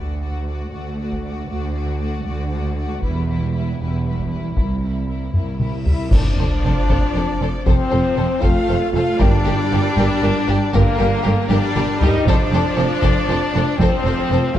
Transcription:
Already playing: cello section D2, double bass section D2, viola section A3, french horn section A3 F#4, violin section F#4 D5
0.21 viola section A3, violin section F#4 D5
0.46 viola section A3, violin section F#4 D5
0.71 cello section D2, double bass section D2, viola section A3, violin section F#4 D5
0.97 viola section A3, violin section F#4 D5
1.11 taiko
1.23 viola section A3, violin section F#4 D5
1.48 cello section D2, double bass section D2, viola section A3, violin section F#4 D5
1.74 viola section A3, violin section F#4 D5
1.99 viola section A3, violin section F#4 D5
2.25 cello section D2, double bass section D2, viola section A3, violin section F#4 D5
2.50 viola section A3, violin section F#4 D5
2.76 viola section A3, violin section D5
2.80 violin section F#4
3.01 double bass section E1, cello section E2, viola section G3, french horn section B3 G4, violin section E4 B4, taiko
3.28 viola section G3, violin section E4 B4
3.53 viola section G3, violin section E4 B4
3.78 double bass section E1, cello section E2, viola section G3, violin section E4 B4
4.05 viola section G3, violin section E4 B4
4.18 taiko
4.32 viola section G3, violin section E4 B4
4.55 cello section C2, double bass section C2, viola section G3, french horn section A#3 E4, violin section E4 A#4, taiko, cymbal swell
4.82 viola section G3, violin section E4 A#4
5.08 viola section G3, violin section E4 A#4
5.33 cello section C2, double bass section C2, viola section G3, violin section E4 A#4, taiko low-mid
5.58 viola section G3, violin section E4 A#4, taiko mid
5.84 viola section G3, french horn section E4, violin section E4 A#4 E5, taiko low
6.10 double bass section F1, cello section F2, viola section F3, french horn section D4, violin section A4 C5 D5, concert bass drum, taiko, crash, sub drop
6.38 double bass section F1, cello section F2, violin section A4 C5
6.63 double bass section F1, cello section F2, violin section A4 C5
6.88 double bass section F1, cello section F2, violin section A4 C5, taiko
7.15 double bass section F1, cello section F2, violin section A4 C5
7.41 double bass section F1, cello section F2, violin section A4 C5
7.64 double bass section F1, cello section F2, viola section F3, french horn section C4, violin section A4 C5, taiko
7.68 violin section C5
7.90 double bass section F1, cello section F2, violin section A4 C5
8.16 double bass section F1, cello section F2, violin section A4 C5
8.41 double bass section F1, cello section F2, viola section A3, french horn section F4, violin section A4 C5 F5, taiko
8.68 double bass section F1, cello section F2, violin section A4 C5
8.92 double bass section F1, cello section F2, viola section A3, french horn section F4, violin section A4 C5 F5
9.19 double bass section G1, timpani G2, cello section G2, viola section G3, french horn section D4, violin section G4 A#4 D5, taiko
9.44 double bass section G1, cello section G2, violin section G4 A#4
9.72 double bass section G1, cello section G2, violin section G4 A#4
9.97 double bass section G1, cello section G2, violin section G4 A#4, taiko
10.22 double bass section G1, cello section G2, violin section G4 A#4
10.47 double bass section G1, cello section G2, violin section G4 A#4
10.72 double bass section G1, cello section G2, viola section D3, french horn section A#3, violin section G4 A#4, taiko
10.98 double bass section G1, cello section G2, violin section G4 A#4
11.23 double bass section G1, cello section G2, violin section G4 A#4
11.49 double bass section G1, cello section G2, viola section G3, french horn section D4, violin section G4 A#4 D5, taiko high
11.76 double bass section G1, cello section G2, violin section G4 A#4, taiko mid
12.00 double bass section G1, cello section G2, viola section G3, french horn section D#4, violin section G4 A#4 D#5, taiko low
12.26 double bass section F1, cello section F2, viola section F3, french horn section D4, violin section A4 C5 D5, taiko
12.52 double bass section F1, cello section F2, violin section A4 C5, taiko rim
12.76 double bass section F1, cello section F2, violin section A4 C5
13.02 double bass section F1, cello section F2, violin section A4 C5, taiko
13.27 double bass section F1, cello section F2, violin section A4 C5
13.53 double bass section F1, cello section F2, violin section A4 C5
13.77 double bass section F1, cello section F2, viola section F3, french horn section C4, violin section C5, taiko
13.81 violin section A4 C5
14.04 double bass section F1, cello section F2, violin section A4 C5
14.29 double bass section F1, cello section F2, violin section A4 C5
14.53 cello section F2, viola section A3, violin section F5, taiko

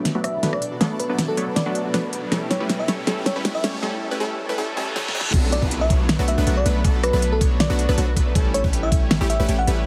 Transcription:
Already playing: ambient pad B2 F#3 D4 A4 D5, supersaw synth F#3 A3 B3 D4 C#5, harp A3 B3 D4 E4 F#4, riser
0.05 snare, closed hi-hat
0.15 supersaw synth F#3 A3 B3 D4 F#4, harp F#4
0.24 harp D4, fm electric piano E5, cross-stick, closed hi-hat
0.34 harp B3
0.43 supersaw synth F#3 A3 B3 D4 B4, harp B3, snare, closed hi-hat
0.53 harp D4, fm electric piano D5, cross-stick
0.62 closed hi-hat
0.72 harp F#4
0.81 supersaw synth F#3 A3 B3 D4 A4, harp D4, snare, closed hi-hat
0.91 harp B3
0.99 harp B3, fm electric piano B4, closed hi-hat
1.09 supersaw synth F#3 A3 B3 D4 B4, harp D4
1.19 snare, closed hi-hat
1.28 harp F#4, fm electric piano A4
1.37 supersaw synth F#3 A3 B3 D4 C#5, harp D4, closed hi-hat
1.47 harp B3
1.56 harp B3, fm electric piano D5, snare, closed hi-hat
1.66 supersaw synth F#3 A3 B3 D4 F#4, harp D4
1.75 closed hi-hat
1.85 harp F#4
1.94 supersaw synth F#3 A3 B3 D4 B4, harp D4, snare, closed hi-hat
2.04 harp B3
2.13 harp B3, closed hi-hat
2.23 harp D4
2.31 ambient pad A2 G3 B3 A4, supersaw synth G3 A3 C#4 E4 A4, snare, closed hi-hat
2.41 harp G4
2.50 harp E4, fm electric piano C#5, snare, closed hi-hat
2.60 supersaw synth G3 A3 C#4 E4 B4, harp C#4
2.69 harp C#4, snare, closed hi-hat
2.79 harp E4, fm electric piano E5
2.88 supersaw synth G3 A3 C#4 E4 C#5, snare, closed hi-hat
2.98 harp G4
3.07 supersaw synth G3 A3 C#4 E4 A4, snare, closed hi-hat
3.17 harp G4
3.26 harp E4, fm electric piano C#5, snare, closed hi-hat
3.36 supersaw synth G3 A3 C#4 E4 B4, harp C#4
3.45 harp C#4, snare, closed hi-hat
3.55 harp E4, fm electric piano E5
3.64 supersaw synth G3 A3 C#4 E4 C#5, snare, closed hi-hat
3.73 harp G4
3.83 supersaw synth G3 A3 C#4 E4 A4
4.11 supersaw synth G3 A3 C#4 E4 B4
4.20 supersaw synth G3 A3 C#4 E4 A4
4.49 supersaw synth G3 A3 C#4 E4 B4
4.58 supersaw synth G3 A3 C#4 E4 A4, reverse cymbal
4.77 supersaw synth G3 A3 C#4 E4 A4
4.96 supersaw synth G3 A3 C#4 E4 A4, snare
5.08 snare
5.15 supersaw synth G3 A3 C#4 E4 A4
5.21 snare
5.33 808-style bass B1, supersaw synth F#3 A3 B3 D4 A4, harp F#4, kick, closed hi-hat, crash, downlifter
5.43 harp D4
5.52 fm electric piano D5, closed hi-hat
5.62 808-style bass B1, supersaw synth F#3 A3 B3 D4 B4, harp B3, kick
5.71 harp A3, closed hi-hat
5.81 harp F#4, fm electric piano E5
5.90 808-style bass B1, supersaw synth F#3 A3 B3 D4 C#5, harp F#4, kick, closed hi-hat
6.00 harp D4
6.09 snare, closed hi-hat
6.19 808-style bass B1, supersaw synth F#3 A3 B3 D4 F#4, harp B3
6.28 harp A3, fm electric piano E5, closed hi-hat
6.38 808-style bass B1, supersaw synth F#3 A3 B3 D4 B4, harp F#4
6.47 808-style bass B1, supersaw synth F#3 A3 B3 D4 F#4, harp F#4, closed hi-hat
6.57 harp D4, fm electric piano D5
6.66 808-style bass B1, supersaw synth F#3 A3 B3 D4 B4, closed hi-hat
6.76 harp B3
6.84 808-style bass B1, supersaw synth F#3 A3 B3 D4 A4, harp A3, kick, closed hi-hat
6.94 harp F#4
7.03 harp F#4, fm electric piano B4, cross-stick, closed hi-hat
7.13 808-style bass B1, supersaw synth F#3 A3 B3 D4 B4, harp D4
7.22 closed hi-hat
7.32 harp B3, fm electric piano A4
7.41 808-style bass B1, supersaw synth F#3 A3 B3 D4 C#5, harp A3, kick, closed hi-hat
7.51 harp F#4
7.60 harp F#4, fm electric piano D5, snare, closed hi-hat
7.70 808-style bass B1, supersaw synth F#3 A3 B3 D4 F#4, harp D4
7.79 closed hi-hat
7.89 808-style bass B1, supersaw synth F#3 A3 B3 D4 B4, harp B3
7.98 808-style bass B1, supersaw synth F#3 A3 B3 D4 F#4, harp A3, closed hi-hat
8.08 harp F#4
8.16 808-style bass B1, supersaw synth F#3 A3 B3 D4 B4, harp F#4, kick, closed hi-hat
8.26 harp D4
8.35 808-style bass A1, supersaw synth G3 A3 C#4 E4 A4, kick, closed hi-hat
8.45 harp C#4
8.54 harp A3, fm electric piano C#5, closed hi-hat
8.64 808-style bass A1, supersaw synth G3 A3 C#4 E4 B4, harp G4, kick
8.73 harp G4, closed hi-hat
8.83 harp E4, fm electric piano E5
8.92 808-style bass A1, supersaw synth G3 A3 C#4 E4 C#5, kick, closed hi-hat
9.02 harp C#4
9.11 harp A3, snare, closed hi-hat
9.21 808-style bass A1, supersaw synth G3 A3 C#4 E4 G4, harp G4
9.29 harp G4, fm electric piano E5, closed hi-hat
9.39 808-style bass A1, supersaw synth G3 A3 C#4 E4 B4, harp E4
9.49 808-style bass A1, supersaw synth G3 A3 C#4 E4 G4, closed hi-hat
9.58 harp C#4, fm electric piano F#5
9.67 808-style bass A1, supersaw synth G3 A3 C#4 E4 B4, harp A3, closed hi-hat
9.77 harp G4

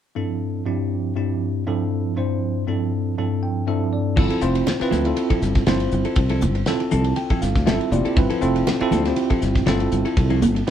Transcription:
0.15 tine electric piano G2 F3 C4 D4 E4 A4
0.66 tine electric piano G2 F3 C4 D4 E4 G4
1.15 tine electric piano G2 F3 C4 D4 E4 G4
1.67 tine electric piano G2 F3 C4 D4 E4 A4
2.16 tine electric piano G2 F3 C4 D4 E4 C5
2.67 tine electric piano G2 F3 C4 D4 E4 A4
3.17 tine electric piano G2 F3 C4 D4 E4 A4
3.43 tine electric piano G5
3.67 tine electric piano G2 F3 C4 D4 E4 A4 E5
3.93 tine electric piano D5
4.16 fretless electric bass G1, clean electric guitar F3 C4 E4 A4, tine electric piano C4 E4 F4 A4, kick, crash, muted conga
4.30 clean electric guitar F3 C4 E4 A4, ride
4.41 fretless electric bass F1, tine electric piano C4 E4 F4 C5, muted clean electric guitar stroke, hi-hat pedal
4.55 muted clean electric guitar stroke, ride
4.67 snare, ride, high conga
4.80 tine electric piano C4 E4 F4 B4, muted clean electric guitar stroke, muted fretless electric bass stroke, snare, ride
4.91 fretless electric bass D2, clean electric guitar F3 C4 E4 A4, snare, hi-hat pedal, muted conga, high conga
5.05 tine electric piano C4 E4 F4 A4, muted clean electric guitar stroke, ride
5.16 muted clean electric guitar stroke, ride, muted conga
5.30 clean electric guitar F3 C4 E4 A4, kick, ride
5.42 fretless electric bass G1, muted clean electric guitar stroke, snare, hi-hat pedal, muted conga
5.55 muted clean electric guitar stroke, kick, snare, ride
5.67 fretless electric bass G1, clean electric guitar F3 C4 E4 A4, tine electric piano C4 E4 F4 C5, snare, ride, high conga
5.80 muted clean electric guitar stroke, ride
5.91 fretless electric bass G1, hi-hat pedal
6.05 clean electric guitar C4 E4 A4, ride
6.16 fretless electric bass C2, kick, ride, muted conga
6.29 clean electric guitar F3 C4 E4 A4, ride
6.41 fretless electric bass G1, muted clean electric guitar stroke, hi-hat pedal, high conga
6.55 muted clean electric guitar stroke, ride
6.66 tine electric piano C4 E4 F4 A4, snare, ride
6.80 muted clean electric guitar stroke, ride
6.91 fretless electric bass C2, clean electric guitar F3 C4 E4 A4, tine electric piano A5, hi-hat pedal, muted conga
7.04 muted clean electric guitar stroke, ride
7.16 tine electric piano G5, muted clean electric guitar stroke, ride, muted conga
7.30 clean electric guitar F3 C4 E4 A4, kick, ride
7.42 fretless electric bass G1, tine electric piano F5, snare, hi-hat pedal, muted conga
7.56 fretless electric bass D2, muted clean electric guitar stroke, kick, snare, ride
7.66 fretless electric bass G1, clean electric guitar F3 C4 E4 A4, tine electric piano C4 E4 F4 A4 E5, snare, ride, high conga, low conga
7.80 muted clean electric guitar stroke, ride
7.91 fretless electric bass F1, tine electric piano C4 E4 F4 G4 D5, hi-hat pedal, high conga
8.05 clean electric guitar C4 E4 A4, ride
8.16 fretless electric bass G1, tine electric piano C4 E4 F4 B4, kick, ride, muted conga
8.30 clean electric guitar F3 C4 E4 A4, ride
8.41 fretless electric bass F1, tine electric piano C4 E4 F4 A4, muted clean electric guitar stroke, hi-hat pedal
8.55 muted clean electric guitar stroke, ride
8.67 snare, ride, high conga
8.80 tine electric piano C4 E4 F4 A4, muted clean electric guitar stroke, muted fretless electric bass stroke, ride
8.91 fretless electric bass D2, clean electric guitar F3 C4 E4 A4, snare, hi-hat pedal, muted conga, high conga
9.05 tine electric piano C4 E4 F4 G4, muted clean electric guitar stroke, snare, ride
9.16 muted clean electric guitar stroke, ride, muted conga
9.30 clean electric guitar F3 C4 E4 A4, kick, ride
9.41 fretless electric bass G1, muted clean electric guitar stroke, snare, hi-hat pedal, muted conga
9.55 muted clean electric guitar stroke, kick, snare, ride
9.66 fretless electric bass G1, clean electric guitar F3 C4 E4 A4, tine electric piano C4 E4 F4 A4, snare, ride, high conga
9.80 muted clean electric guitar stroke, ride
9.92 fretless electric bass G1, hi-hat pedal
10.05 clean electric guitar C4 E4 A4, ride
10.17 fretless electric bass C2, kick, ride, muted conga
10.30 clean electric guitar F3 C4 E4 A4, ride
10.42 fretless electric bass G1, hi-hat pedal, high conga
10.55 muted clean electric guitar stroke, ride
10.67 tine electric piano C4

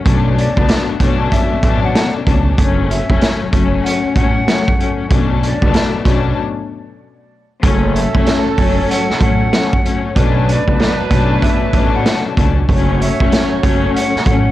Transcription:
0.04 upright bass B1, string section B2 F#3 A3 C#4 D4, kick, closed hi-hat
0.37 flute D5, closed hi-hat
0.56 upright bass C#2, string section B2 F#3 A3 B3 D4, kick
0.69 snare, closed hi-hat
0.89 muted upright bass stroke
1.00 upright bass B1, string section B2 F#3 A3 C#4 D4, kick, snare, closed hi-hat
1.31 flute E5, kick, closed hi-hat
1.52 muted upright bass stroke
1.62 upright bass A1, string section B2 F#3 A3 C#4 D4, kick, closed hi-hat
1.84 flute F#5
1.95 snare, closed hi-hat
2.26 upright bass C#2, string section B2 F#3 A3 C#4 D4, kick, closed hi-hat
2.57 upright bass F#1, string section F#3 A3 C#4, kick, closed hi-hat
2.90 flute E5, closed hi-hat
3.08 upright bass E1, string section F#3 A3 C#4, kick
3.22 snare, closed hi-hat
3.42 muted upright bass stroke
3.52 upright bass F#1, string section F#3 A3 C#4, kick, closed hi-hat
3.84 flute F#5, closed hi-hat
4.05 muted upright bass stroke
4.15 upright bass A1, string section F#3 A3 C#4, flute F#5, kick, closed hi-hat
4.46 string section F#3 A3 C#4, snare, closed hi-hat
4.68 kick
4.77 string section F#3 A3 C#4, closed hi-hat
5.09 upright bass B1, string section B2 F#3 A3 C#4 D4, kick, closed hi-hat
5.43 flute D5, closed hi-hat
5.61 upright bass C#2, string section B2 F#3 A3 B3 D4, kick
5.74 snare, closed hi-hat
5.94 muted upright bass stroke
6.05 upright bass B1, string section B2 F#3 A3 C#4 D4, kick, snare, closed hi-hat
7.62 upright bass F#1, string section F#3 A3 C#4, horn section F#3 C#4 A4, kick, closed hi-hat
7.95 flute E5, closed hi-hat
8.13 upright bass E1, string section F#3 A3 C#4, kick
8.27 snare, closed hi-hat
8.46 muted upright bass stroke
8.57 upright bass F#1, string section F#3 A3 C#4, kick, open hi-hat
8.89 flute F#5, closed hi-hat
9.10 muted upright bass stroke, snare
9.20 upright bass A1, string section F#3 A3 C#4, flute F#5, kick, closed hi-hat
9.52 string section F#3 A3 C#4, snare, closed hi-hat
9.73 kick
9.82 string section F#3 A3 C#4, closed hi-hat
10.14 upright bass B1, string section B2 F#3 A3 C#4 D4, horn section F#3 D4 B4, kick, closed hi-hat
10.48 flute D5, closed hi-hat
10.66 upright bass C#2, string section B2 F#3 A3 B3 D4, kick
10.79 snare, closed hi-hat
10.99 muted upright bass stroke
11.10 upright bass B1, string section B2 F#3 A3 C#4 D4, kick, snare, closed hi-hat
11.42 flute E5, kick, closed hi-hat
11.62 muted upright bass stroke
11.72 upright bass A1, string section B2 F#3 A3 C#4 D4, kick, closed hi-hat
11.95 flute F#5
12.06 snare, closed hi-hat
12.37 upright bass C#2, string section B2 F#3 A3 C#4 D4, kick, closed hi-hat
12.67 upright bass F#1, string section F#3 A3 C#4, horn section A3 F#4 C#5, kick, closed hi-hat
13.01 flute E5, closed hi-hat
13.19 upright bass E1, string section F#3 A3 C#4, kick
13.32 snare, closed hi-hat
13.52 muted upright bass stroke
13.62 upright bass F#1, string section F#3 A3 C#4, kick, closed hi-hat
13.95 flute F#5, closed hi-hat
14.15 muted upright bass stroke, snare
14.26 upright bass A1, string section F#3 A3 C#4, flute F#5, kick, closed hi-hat

